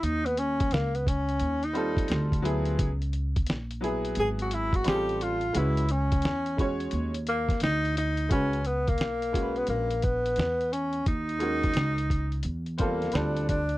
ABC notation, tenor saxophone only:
X:1
M:4/4
L:1/16
Q:"Swing 16ths" 1/4=87
K:D#phr
V:1 name="Tenor saxophone"
D B, C2 A, B, C3 D4 z3 | z8 G F E F =G2 =F2 | E2 C6 z2 A,2 D2 D2 | C2 B, A,4 B, A,2 B,4 C2 |
D8 z2 A,2 =D2 D2 |]